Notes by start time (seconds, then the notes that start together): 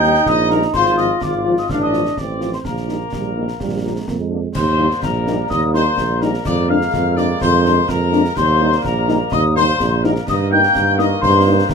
Already playing: D#2 D#4 G5 G6
0.02 G3 A#3 D#4, snare
0.15 snare
0.26 A#1 D#5 D#6, concert bass drum, snare
0.49 G3 A#3 D#4 A#4 A#5, snare
0.62 snare
0.73 G#1 F4 C5 C6, concert bass drum, snare, crash
0.86 snare
0.97 F3 C4 F4 D#5 D#6, snare
1.21 G#1 F4 D5 D6, concert bass drum, snare
1.45 F3 C4 F4
1.57 D#5 D#6, snare
1.69 A1 D4 F5 F6, concert bass drum, snare
1.82 D#5 D#6
1.93 F3 C4 F4, snare
2.05 snare
2.17 A1 C4 D5 D6, concert bass drum, snare
2.40 F3 C4 F4, snare
2.53 C5 C6, snare
2.64 A#1 A#3 A#4 A#5, concert bass drum, snare
2.77 snare
2.89 G3 A#3 D#4, snare
3.13 A#1 G3, concert bass drum, snare
3.35 G3 A#3 D#4
3.48 snare
3.60 A#1 G3, concert bass drum, snare
3.84 F3 A#3 D4
3.95 G#3
4.08 F2 A#3, concert bass drum, snare
4.19 G#3
4.31 F3 A#3 D4
4.54 D#2 G3 A#3 C5 C6, concert bass drum, snare, crash
4.78 G3 A#3 D#4
4.91 snare
5.02 A#1 A#4 A#5, concert bass drum, snare
5.27 G3 A#3 D#4, snare
5.49 D#2 D#5 D#6, concert bass drum, snare
5.74 G3 A#3 D#4 C5 C6, snare
5.98 A#1, concert bass drum, snare
6.21 G3 A#3 D#4 A#4 A#5, snare
6.34 snare
6.45 F2 G#3 A#3 D5 D6, concert bass drum, snare, crash
6.69 G#3 A#3 D4 F5 F6
6.81 snare
6.94 F2, concert bass drum, snare
7.16 G#3 A#3 D4 D5 D6, snare
7.41 F2 C5 C6, concert bass drum, snare
7.65 G#3 A#3 D4, snare
7.88 F2 A#4 A#5, concert bass drum, snare
8.12 G#3 A#3 D4, snare
8.25 snare
8.36 D#2 G3 A#3 C5 C6, concert bass drum, snare, crash
8.60 G3 A#3 D#4
8.72 snare
8.83 A#1 A#4 A#5, concert bass drum, snare
9.08 G3 A#3 D#4, snare
9.31 D#2 D#5 D#6, concert bass drum, snare
9.55 G3 A#3 D#4 C5 C6, snare
9.79 A#1, concert bass drum, snare
10.03 G3 A#3 D#4 A#4 A#5, snare
10.16 snare
10.26 G2 D#3 A#3 D#5 D#6, concert bass drum, snare, crash
10.50 A#3 D#4 G5 G6
10.63 snare
10.75 G2, concert bass drum, snare
10.98 A#3 D#4 D#5 D#6, snare
11.21 G2 C5 C6, concert bass drum, snare
11.46 A#3 D#4
11.69 G2 A#4 A#5, concert bass drum, snare